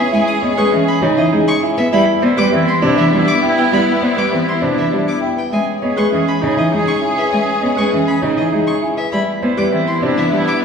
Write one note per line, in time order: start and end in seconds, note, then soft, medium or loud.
0.00 1.74 C#4 medium
0.00 0.11 G#4 medium
0.00 1.74 G#4 medium
0.00 0.17 B4 medium
0.12 0.24 G#3 medium
0.12 0.32 E4 medium
0.12 0.32 E5 medium
0.12 0.24 G#5 medium
0.21 0.43 G#4 medium
0.28 0.39 D#6 medium
0.42 0.54 B3 medium
0.42 0.62 C#5 medium
0.42 0.62 D#5 medium
0.51 0.73 G#4 medium
0.57 0.68 G#3 medium
0.57 0.76 G#4 medium
0.57 0.77 B4 medium
0.57 0.69 C#6 medium
0.72 0.84 E3 medium
0.72 0.92 C#4 medium
0.72 0.92 E5 medium
0.84 1.06 G#4 medium
0.84 0.99 B5 medium
1.02 1.13 C#3 medium
1.02 1.22 D#4 medium
1.02 1.22 C#5 medium
1.15 1.29 E3 medium
1.15 1.37 E4 medium
1.15 1.37 G#4 soft
1.15 1.29 D#5 medium
1.15 1.37 E5 medium
1.33 1.44 G#3 medium
1.33 1.52 D#4 medium
1.33 1.52 G#4 medium
1.46 1.68 G#4 soft
1.46 1.59 C#6 medium
1.63 1.82 E4 medium
1.63 1.82 G#5 medium
1.77 1.89 B3 medium
1.77 1.97 B4 medium
1.77 1.89 E5 medium
1.92 2.03 G3 loud
1.92 5.34 B3 medium
1.92 2.12 E4 medium
1.92 5.34 E4 medium
1.92 2.15 E4 soft
1.92 2.12 E5 medium
1.92 2.04 B5 medium
2.22 2.33 B3 medium
2.22 2.46 E4 medium
2.22 2.42 C5 medium
2.22 2.42 D5 medium
2.37 2.49 G3 medium
2.37 2.57 G4 medium
2.37 2.57 B4 medium
2.37 2.49 D6 medium
2.52 2.64 E3 medium
2.52 2.72 C4 medium
2.52 2.77 E4 medium
2.52 2.71 E5 medium
2.68 2.79 C6 medium
2.82 2.94 C3 medium
2.82 3.02 D4 medium
2.82 3.02 C5 medium
2.87 3.09 E4 medium
2.97 3.09 E3 medium
2.97 3.17 E4 medium
2.97 3.17 E5 medium
2.97 3.09 E5 medium
3.12 3.24 G3 medium
3.12 3.31 D4 medium
3.12 3.32 G4 medium
3.18 3.40 E4 medium
3.28 3.39 D6 medium
3.41 3.62 E4 medium
3.41 3.61 G5 medium
3.48 3.71 E4 medium
3.57 3.77 B4 medium
3.57 3.68 G5 medium
3.71 3.83 G3 medium
3.71 3.91 E4 medium
3.71 3.91 E5 medium
3.71 3.84 B5 medium
3.80 4.02 E4 medium
4.02 4.14 B3 medium
4.02 4.22 C5 medium
4.02 4.21 D5 medium
4.11 4.33 E4 medium
4.16 4.28 G3 medium
4.16 4.36 G4 medium
4.16 4.36 B4 medium
4.16 4.29 D6 medium
4.31 4.43 E3 medium
4.31 4.52 C4 medium
4.31 4.51 E5 medium
4.43 4.65 E4 medium
4.48 4.59 C6 medium
4.62 4.73 C3 medium
4.62 4.82 D4 medium
4.62 4.81 C5 medium
4.74 4.88 E3 medium
4.74 4.96 E4 soft
4.74 4.97 E4 medium
4.74 4.97 E5 medium
4.74 4.89 E5 medium
4.90 5.04 G3 medium
4.90 5.12 D4 medium
4.90 5.11 G4 medium
5.06 5.28 E4 soft
5.06 5.19 D6 medium
5.21 5.42 E4 medium
5.21 5.41 G5 medium
5.36 5.56 B4 soft
5.36 5.49 G5 medium
5.51 5.64 G#3 medium
5.51 8.94 C#4 medium
5.51 5.74 G#4 soft
5.51 8.94 G#4 medium
5.51 5.71 E5 medium
5.51 5.64 G#5 medium
5.82 5.94 B3 medium
5.82 6.06 G#4 soft
5.82 6.02 C#5 medium
5.82 6.02 D#5 medium
5.96 6.09 G#3 medium
5.96 6.16 G#4 medium
5.96 6.17 B4 medium
5.96 6.09 C#6 medium
6.11 6.24 E3 medium
6.11 6.32 C#4 medium
6.11 6.37 G#4 medium
6.11 6.31 E5 medium
6.28 6.39 B5 medium
6.42 6.54 C#3 medium
6.42 6.61 D#4 medium
6.42 6.62 C#5 medium
6.46 6.68 G#4 medium
6.57 6.69 E3 medium
6.57 6.77 E4 medium
6.57 6.69 D#5 medium
6.57 6.77 E5 medium
6.72 6.84 G#3 medium
6.72 6.92 D#4 medium
6.72 6.92 G#4 medium
6.77 6.99 G#4 medium
6.87 6.99 C#6 medium
7.01 7.21 E4 medium
7.01 7.22 G#5 medium
7.09 7.31 G#4 medium
7.17 7.37 B4 medium
7.17 7.29 E5 medium
7.32 7.44 G#3 medium
7.32 7.52 E5 medium
7.32 7.43 G#5 medium
7.41 7.63 G#4 medium
7.62 7.74 B3 medium
7.62 7.81 C#5 medium
7.62 7.81 D#5 medium
7.72 7.94 G#4 medium
7.76 7.89 G#3 medium
7.76 7.97 G#4 medium
7.76 7.96 B4 medium
7.76 7.88 C#6 medium
7.92 8.04 E3 medium
7.92 8.12 C#4 medium
7.92 8.11 E5 medium
8.04 8.25 G#4 medium
8.04 8.18 B5 medium
8.22 8.34 C#3 medium
8.22 8.42 D#4 medium
8.22 8.41 C#5 medium
8.36 8.49 E3 medium
8.36 8.57 E4 medium
8.36 8.57 G#4 soft
8.36 8.49 D#5 medium
8.36 8.57 E5 medium
8.52 8.64 G#3 medium
8.52 8.72 D#4 medium
8.52 8.72 G#4 medium
8.66 8.88 G#4 soft
8.66 8.78 C#6 medium
8.82 9.02 E4 medium
8.82 9.02 G#5 medium
8.97 9.17 B4 medium
8.97 9.08 E5 medium
9.11 9.24 G3 medium
9.11 10.65 B3 medium
9.11 10.65 E4 medium
9.11 9.34 E4 soft
9.11 9.32 E5 medium
9.11 9.23 B5 medium
9.42 9.54 B3 medium
9.42 9.65 E4 soft
9.42 9.62 C5 medium
9.42 9.62 D5 medium
9.57 9.68 G3 medium
9.57 9.77 G4 medium
9.57 9.77 B4 medium
9.57 9.68 D6 medium
9.72 9.83 E3 medium
9.72 9.92 C4 medium
9.72 9.96 E4 medium
9.72 9.92 E5 medium
9.87 9.99 C6 medium
10.02 10.13 C3 medium
10.02 10.22 D4 medium
10.02 10.22 C5 medium
10.06 10.28 E4 medium
10.17 10.28 E3 medium
10.17 10.37 E4 medium
10.17 10.29 E5 medium
10.32 10.43 G3 medium
10.32 10.52 D4 medium
10.32 10.52 G4 medium
10.38 10.60 E4 medium
10.48 10.59 D6 medium